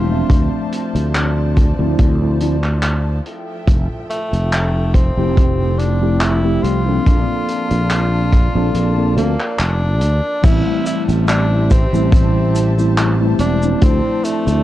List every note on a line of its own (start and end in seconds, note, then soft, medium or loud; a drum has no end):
0.00 0.22 E1 medium
0.00 0.72 F4 loud
0.00 0.26 G4 medium
0.00 3.21 C5 medium
0.00 0.26 E5 medium
0.00 3.21 A5 medium
0.09 1.73 F3 medium
0.09 1.74 A3 medium
0.09 1.74 C4 medium
0.09 1.74 D4 medium
0.09 1.75 E5 medium
0.30 0.48 D2 medium
0.30 10.40 F3 medium
0.30 3.23 D5 medium
0.30 kick loud
0.30 closed hi-hat medium
0.72 closed hi-hat medium
0.95 1.72 D2 medium
0.95 closed hi-hat medium
1.14 clap loud
1.14 closed hi-hat medium
1.56 kick medium
1.56 closed hi-hat medium
1.79 1.95 D2 loud
1.79 2.16 F3 medium
1.79 2.16 A3 medium
1.79 2.16 C4 medium
1.79 2.16 D4 medium
1.79 2.17 E4 medium
1.98 3.19 D2 medium
1.98 kick loud
1.98 closed hi-hat medium
2.21 2.36 F3 medium
2.21 2.36 A3 medium
2.21 2.37 C4 medium
2.21 2.37 D4 medium
2.21 2.37 E4 medium
2.40 2.55 F3 medium
2.40 2.55 A3 medium
2.40 2.55 C4 medium
2.40 2.56 D4 medium
2.40 2.56 E4 medium
2.40 closed hi-hat medium
2.64 clap soft
2.83 clap loud
2.83 closed hi-hat medium
3.26 7.02 A4 medium
3.26 4.93 E5 medium
3.26 7.02 G5 loud
3.26 closed hi-hat medium
3.67 3.86 F1 loud
3.67 kick loud
3.67 closed hi-hat medium
4.10 4.96 A3 loud
4.10 closed hi-hat medium
4.33 5.10 F1 loud
4.33 closed hi-hat medium
4.52 clap loud
4.52 closed hi-hat medium
4.94 5.80 C4 loud
4.94 kick medium
4.94 closed hi-hat medium
5.17 6.57 F1 loud
5.17 5.96 F3 medium
5.17 5.96 A3 medium
5.17 5.96 C4 medium
5.17 5.97 E4 medium
5.17 5.97 G4 loud
5.37 kick loud
5.37 closed hi-hat medium
5.78 6.22 D4 loud
5.78 closed hi-hat medium
6.01 6.38 F3 medium
6.01 6.38 A3 medium
6.01 6.39 C4 medium
6.01 6.39 E4 medium
6.01 6.39 G4 medium
6.20 6.64 E4 loud
6.20 clap loud
6.20 closed hi-hat medium
6.43 6.81 F3 medium
6.43 6.81 A3 medium
6.43 6.81 C4 medium
6.43 6.81 E4 medium
6.43 6.81 G4 loud
6.63 6.98 C2 medium
6.63 9.17 F4 loud
6.63 closed hi-hat medium
6.85 8.49 F3 medium
6.85 8.50 A#3 medium
6.85 8.50 C4 medium
6.85 8.51 D4 medium
6.85 8.51 A4 loud
7.06 7.24 A#1 medium
7.06 10.41 A#3 medium
7.06 10.41 D5 medium
7.06 10.41 A5 medium
7.06 kick loud
7.06 closed hi-hat medium
7.48 closed hi-hat medium
7.70 8.48 A#1 medium
7.70 closed hi-hat medium
7.90 clap loud
7.90 closed hi-hat medium
8.32 kick medium
8.32 closed hi-hat medium
8.55 8.71 A#1 loud
8.55 8.92 F3 medium
8.55 8.92 A#3 medium
8.55 8.92 C4 medium
8.55 8.92 D4 medium
8.55 8.93 A4 loud
8.74 9.16 A#1 medium
8.74 closed hi-hat medium
8.97 9.12 F3 medium
8.97 9.12 A#3 medium
8.97 9.12 C4 medium
8.97 9.13 D4 medium
8.97 9.13 A4 medium
9.16 9.35 D2 loud
9.16 9.31 F3 medium
9.16 9.31 A#3 medium
9.16 9.61 A#3 medium
9.16 9.31 C4 medium
9.16 9.32 D4 medium
9.16 9.32 A4 medium
9.16 closed hi-hat medium
9.40 clap soft
9.59 10.01 F1 medium
9.59 10.46 D4 loud
9.59 clap loud
9.59 closed hi-hat medium
10.01 10.20 D2 loud
10.01 closed hi-hat medium
10.42 10.62 A1 medium
10.42 11.70 E3 medium
10.42 11.70 G3 medium
10.42 11.71 A3 medium
10.42 11.71 C4 medium
10.42 10.86 E4 loud
10.42 11.71 E4 loud
10.42 13.78 G4 medium
10.42 14.63 C5 medium
10.42 13.78 E5 medium
10.42 14.63 A5 loud
10.42 kick loud
10.42 closed hi-hat loud
10.42 crash loud
10.42 cabasa medium
10.86 11.03 E4 loud
10.86 closed hi-hat medium
10.86 cabasa medium
11.09 11.86 A1 loud
11.09 closed hi-hat medium
11.09 cabasa medium
11.28 11.73 D4 loud
11.28 clap loud
11.28 closed hi-hat loud
11.28 cabasa soft
11.71 12.13 C4 medium
11.71 kick loud
11.71 closed hi-hat medium
11.71 cabasa medium
11.92 13.33 A1 loud
11.92 12.72 E3 medium
11.92 12.72 G3 medium
11.92 12.72 A3 medium
11.92 12.73 C4 medium
11.92 12.73 E4 loud
11.92 cabasa medium
12.12 12.94 C4 medium
12.12 kick loud
12.12 closed hi-hat medium
12.12 cabasa soft
12.55 closed hi-hat medium
12.55 cabasa medium
12.77 13.14 E3 medium
12.77 13.15 G3 medium
12.77 13.15 A3 medium
12.77 13.15 C4 medium
12.77 13.15 E4 medium
12.77 cabasa medium
12.97 clap loud
12.97 closed hi-hat medium
12.97 cabasa soft
13.20 13.57 E3 medium
13.20 13.57 G3 medium
13.20 13.57 A3 medium
13.20 13.57 C4 medium
13.20 13.57 E4 loud
13.39 13.74 E1 medium
13.39 13.84 D4 loud
13.39 closed hi-hat medium
13.39 cabasa medium
13.61 14.63 F3 medium
13.61 14.63 A3 medium
13.61 14.63 C4 medium
13.61 14.63 D4 medium
13.61 14.63 E4 medium
13.61 cabasa medium
13.81 14.00 D2 loud
13.81 14.63 F3 medium
13.81 14.26 C4 loud
13.81 14.63 D5 medium
13.81 kick loud
13.81 closed hi-hat loud
13.81 cabasa medium
14.24 14.63 A3 loud
14.24 closed hi-hat medium
14.24 cabasa medium
14.47 14.63 D2 loud
14.47 closed hi-hat medium
14.47 cabasa medium